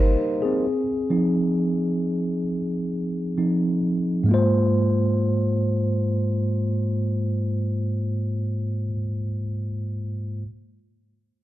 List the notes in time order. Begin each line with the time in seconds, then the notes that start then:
Already playing: D#4 A#4 C5
0.42 C4 G#4
1.10 F3 C4 D#4
3.37 F3 C4 D#4
4.24 G#2 G#3
4.29 A#3 F4
4.34 C5